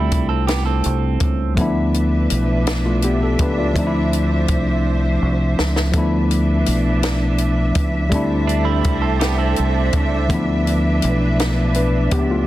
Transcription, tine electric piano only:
0, 0, Header, 1, 2, 480
1, 0, Start_track
1, 0, Tempo, 727273
1, 1037, Time_signature, 6, 3, 24, 8
1, 8230, End_track
2, 0, Start_track
2, 0, Title_t, "Tine electric piano"
2, 0, Program_c, 0, 4
2, 0, Control_c, 0, 64, 127
2, 0, Note_on_c, 0, 55, 73
2, 0, Note_on_c, 0, 57, 74
2, 0, Note_on_c, 0, 60, 79
2, 0, Note_on_c, 0, 62, 65
2, 0, Note_on_c, 0, 64, 81
2, 1005, Note_off_c, 0, 55, 0
2, 1011, Note_off_c, 0, 57, 0
2, 1016, Note_off_c, 0, 60, 0
2, 1019, Note_off_c, 0, 62, 0
2, 1020, Note_on_c, 0, 53, 74
2, 1024, Note_off_c, 0, 64, 0
2, 1032, Note_on_c, 0, 57, 74
2, 1044, Note_on_c, 0, 59, 80
2, 1045, Control_c, 0, 64, 0
2, 1054, Note_on_c, 0, 62, 74
2, 1064, Note_on_c, 0, 64, 85
2, 1166, Control_c, 0, 64, 127
2, 1740, Note_off_c, 0, 57, 0
2, 1746, Note_off_c, 0, 59, 0
2, 1751, Note_off_c, 0, 62, 0
2, 1756, Note_off_c, 0, 64, 0
2, 1885, Note_on_c, 0, 65, 69
2, 1888, Note_on_c, 0, 57, 55
2, 1995, Note_off_c, 0, 65, 0
2, 1997, Note_off_c, 0, 57, 0
2, 2008, Note_on_c, 0, 67, 72
2, 2015, Note_on_c, 0, 59, 61
2, 2117, Note_off_c, 0, 67, 0
2, 2120, Note_off_c, 0, 59, 0
2, 2132, Note_on_c, 0, 69, 76
2, 2239, Note_off_c, 0, 69, 0
2, 2251, Note_on_c, 0, 71, 70
2, 2254, Note_on_c, 0, 62, 55
2, 2358, Note_off_c, 0, 71, 0
2, 2360, Note_off_c, 0, 62, 0
2, 2367, Note_on_c, 0, 74, 62
2, 2368, Note_on_c, 0, 65, 51
2, 2442, Note_off_c, 0, 53, 0
2, 2467, Note_on_c, 0, 53, 78
2, 2477, Note_on_c, 0, 57, 70
2, 2485, Control_c, 0, 64, 0
2, 2485, Note_on_c, 0, 60, 74
2, 2498, Note_on_c, 0, 62, 69
2, 2505, Note_on_c, 0, 63, 72
2, 2534, Note_off_c, 0, 63, 0
2, 2551, Note_on_c, 0, 64, 88
2, 2590, Note_off_c, 0, 74, 0
2, 2591, Note_off_c, 0, 65, 0
2, 2607, Control_c, 0, 64, 127
2, 3885, Note_off_c, 0, 53, 0
2, 3891, Note_off_c, 0, 57, 0
2, 3895, Note_off_c, 0, 60, 0
2, 3901, Note_off_c, 0, 62, 0
2, 3905, Note_on_c, 0, 53, 72
2, 3917, Note_on_c, 0, 57, 76
2, 3925, Control_c, 0, 64, 0
2, 3928, Note_off_c, 0, 64, 0
2, 3928, Note_on_c, 0, 59, 64
2, 3938, Note_on_c, 0, 62, 72
2, 3945, Note_on_c, 0, 64, 87
2, 4046, Control_c, 0, 64, 127
2, 5325, Note_off_c, 0, 53, 0
2, 5331, Note_off_c, 0, 57, 0
2, 5336, Note_off_c, 0, 59, 0
2, 5341, Note_off_c, 0, 62, 0
2, 5342, Note_on_c, 0, 55, 84
2, 5345, Note_off_c, 0, 64, 0
2, 5354, Note_on_c, 0, 57, 70
2, 5363, Note_on_c, 0, 60, 74
2, 5364, Control_c, 0, 64, 0
2, 5375, Note_on_c, 0, 62, 78
2, 5383, Note_on_c, 0, 64, 86
2, 5496, Control_c, 0, 64, 127
2, 6763, Note_off_c, 0, 55, 0
2, 6769, Note_off_c, 0, 57, 0
2, 6774, Note_off_c, 0, 60, 0
2, 6780, Note_off_c, 0, 62, 0
2, 6783, Note_off_c, 0, 64, 0
2, 6784, Note_on_c, 0, 52, 62
2, 6792, Note_on_c, 0, 57, 71
2, 6802, Note_on_c, 0, 59, 75
2, 6807, Control_c, 0, 64, 0
2, 6814, Note_on_c, 0, 62, 71
2, 6825, Note_on_c, 0, 64, 78
2, 6828, Note_on_c, 0, 53, 84
2, 6833, Note_off_c, 0, 52, 0
2, 6917, Control_c, 0, 64, 127
2, 7735, Note_off_c, 0, 57, 0
2, 7740, Note_off_c, 0, 59, 0
2, 7746, Note_off_c, 0, 62, 0
2, 7752, Note_off_c, 0, 64, 0
2, 7761, Note_on_c, 0, 71, 63
2, 7762, Note_on_c, 0, 62, 54
2, 7987, Note_off_c, 0, 71, 0
2, 7988, Note_off_c, 0, 62, 0
2, 8000, Note_on_c, 0, 67, 72
2, 8004, Note_on_c, 0, 59, 66
2, 8113, Note_off_c, 0, 67, 0
2, 8114, Note_off_c, 0, 59, 0
2, 8125, Note_on_c, 0, 65, 70
2, 8127, Note_on_c, 0, 57, 49
2, 8214, Note_off_c, 0, 53, 0
2, 8224, Note_off_c, 0, 57, 0
2, 8230, Note_off_c, 0, 65, 0
2, 8230, End_track
0, 0, End_of_file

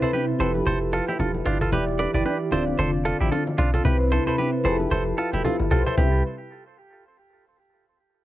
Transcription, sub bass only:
0, 0, Header, 1, 2, 480
1, 0, Start_track
1, 0, Key_signature, 0, "major"
1, 0, Tempo, 530973
1, 1561, Time_signature, 4, 2, 24, 8
1, 7452, End_track
2, 0, Start_track
2, 0, Title_t, "Sub bass"
2, 0, Program_c, 0, 38
2, 361, Note_on_c, 0, 29, 99
2, 556, Note_off_c, 0, 29, 0
2, 601, Note_on_c, 0, 29, 107
2, 908, Note_off_c, 0, 29, 0
2, 1082, Note_on_c, 0, 28, 97
2, 1276, Note_off_c, 0, 28, 0
2, 1321, Note_on_c, 0, 31, 96
2, 1560, Note_on_c, 0, 28, 107
2, 1573, Note_off_c, 0, 31, 0
2, 1867, Note_off_c, 0, 28, 0
2, 1939, Note_on_c, 0, 31, 93
2, 2021, Note_off_c, 0, 31, 0
2, 2280, Note_on_c, 0, 26, 101
2, 2475, Note_off_c, 0, 26, 0
2, 2520, Note_on_c, 0, 29, 102
2, 2828, Note_off_c, 0, 29, 0
2, 2899, Note_on_c, 0, 33, 92
2, 2981, Note_off_c, 0, 33, 0
2, 3240, Note_on_c, 0, 35, 96
2, 3435, Note_off_c, 0, 35, 0
2, 3480, Note_on_c, 0, 36, 112
2, 3788, Note_off_c, 0, 36, 0
2, 4201, Note_on_c, 0, 29, 93
2, 4395, Note_off_c, 0, 29, 0
2, 4441, Note_on_c, 0, 29, 105
2, 4635, Note_off_c, 0, 29, 0
2, 4819, Note_on_c, 0, 28, 89
2, 4901, Note_off_c, 0, 28, 0
2, 5060, Note_on_c, 0, 31, 87
2, 5142, Note_off_c, 0, 31, 0
2, 5162, Note_on_c, 0, 35, 88
2, 5274, Note_off_c, 0, 35, 0
2, 5402, Note_on_c, 0, 36, 101
2, 5625, Note_off_c, 0, 36, 0
2, 7452, End_track
0, 0, End_of_file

